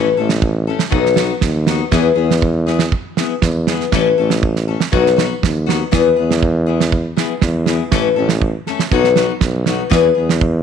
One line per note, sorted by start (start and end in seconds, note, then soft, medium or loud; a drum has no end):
0.00 0.11 A1 medium
0.17 0.75 A1 medium
0.17 0.34 A3 soft
0.17 0.33 C#4 soft
0.17 0.32 A4 medium
0.29 snare medium
0.42 kick medium
0.67 0.84 A3 soft
0.67 0.83 C#4 soft
0.67 0.83 A4 medium
0.79 snare medium
0.90 1.31 B1 loud
0.90 1.07 F#3 medium
0.90 1.07 B3 medium
0.90 1.07 D#4 medium
0.90 1.08 F#4 medium
0.90 kick medium
1.06 snare soft
1.16 1.34 B3 soft
1.16 1.33 D#4 soft
1.16 1.32 F#4 medium
1.16 snare medium
1.41 1.81 D#2 medium
1.41 kick medium
1.41 snare medium
1.67 1.84 B3 medium
1.67 1.83 D#4 medium
1.67 1.82 F#4 medium
1.67 snare medium
1.91 2.11 E2 medium
1.91 2.07 E3 medium
1.91 2.08 B3 medium
1.91 2.08 E4 medium
1.91 2.08 G#4 medium
1.91 kick medium
1.91 snare medium
2.15 2.92 E2 loud
2.15 2.33 B3 soft
2.15 2.33 E4 soft
2.15 2.32 G#4 medium
2.31 snare medium
2.42 kick medium
2.66 2.84 B3 soft
2.66 2.83 E4 medium
2.66 2.82 G#4 medium
2.66 snare soft
2.79 snare medium
2.92 kick medium
3.17 3.34 B3 soft
3.17 3.33 E4 medium
3.17 3.33 G#4 medium
3.17 snare medium
3.42 3.81 E2 medium
3.42 kick medium
3.42 snare medium
3.67 3.84 E4 soft
3.67 3.83 G#4 medium
3.67 snare medium
3.72 3.85 B3 soft
3.80 snare soft
3.92 4.12 A1 medium
3.92 4.08 E3 medium
3.92 4.08 A3 medium
3.92 4.08 C#4 medium
3.92 4.09 A4 medium
3.92 kick medium
3.92 snare medium
4.18 4.76 A1 medium
4.18 4.34 A3 soft
4.18 4.34 C#4 soft
4.18 4.33 A4 medium
4.30 snare medium
4.43 kick medium
4.56 snare soft
4.68 4.84 A3 soft
4.68 4.83 C#4 soft
4.68 4.83 A4 medium
4.80 snare medium
4.92 5.31 B1 loud
4.92 5.07 F#3 medium
4.92 5.08 B3 medium
4.92 5.08 D#4 medium
4.92 5.08 F#4 medium
4.92 kick medium
5.06 snare soft
5.16 5.34 B3 soft
5.16 5.33 D#4 soft
5.16 5.32 F#4 medium
5.16 snare medium
5.43 5.81 D#2 medium
5.43 kick medium
5.43 snare medium
5.66 5.84 B3 soft
5.66 5.83 D#4 soft
5.66 5.82 F#4 medium
5.66 snare medium
5.91 6.12 E2 medium
5.91 6.07 E3 medium
5.91 6.07 B3 medium
5.91 6.07 E4 medium
5.91 6.08 G#4 medium
5.91 kick medium
5.91 snare medium
6.16 7.13 E2 loud
6.16 6.34 B3 soft
6.16 6.32 G#4 medium
6.31 snare medium
6.43 kick medium
6.66 6.83 B3 soft
6.66 6.83 E4 medium
6.66 6.82 G#4 soft
6.81 snare medium
6.92 kick medium
7.17 7.33 B3 soft
7.17 7.33 E4 soft
7.17 7.32 G#4 medium
7.17 snare medium
7.41 7.81 E2 medium
7.41 kick medium
7.41 snare medium
7.66 7.83 B3 soft
7.66 7.83 E4 medium
7.66 7.82 G#4 medium
7.66 snare medium
7.92 8.11 A1 medium
7.92 8.07 E3 medium
7.92 8.07 A3 medium
7.92 8.08 C#4 medium
7.92 8.08 A4 medium
7.92 kick medium
7.92 snare medium
8.16 8.54 A1 loud
8.16 8.33 A3 soft
8.16 8.33 C#4 soft
8.16 8.32 A4 medium
8.29 snare medium
8.42 kick medium
8.67 8.84 A3 soft
8.67 8.83 C#4 soft
8.67 8.82 A4 medium
8.67 snare soft
8.79 snare medium
8.92 9.30 B1 loud
8.92 9.07 F#3 medium
8.92 9.07 B3 medium
8.92 9.07 D#4 medium
8.92 9.08 F#4 medium
8.92 kick medium
9.04 snare soft
9.16 9.33 B3 soft
9.16 9.32 D#4 soft
9.16 9.31 F#4 medium
9.16 snare medium
9.41 9.80 B1 medium
9.41 kick medium
9.41 snare medium
9.66 9.83 B3 soft
9.66 9.82 D#4 soft
9.66 9.82 F#4 medium
9.66 snare medium
9.90 10.11 E2 loud
9.90 10.06 E3 medium
9.90 10.06 B3 medium
9.90 10.07 E4 medium
9.90 10.07 G#4 medium
9.90 kick medium
9.90 snare medium
10.15 10.63 E2 loud
10.15 10.32 B3 soft
10.15 10.31 G#4 soft
10.29 snare medium
10.41 kick medium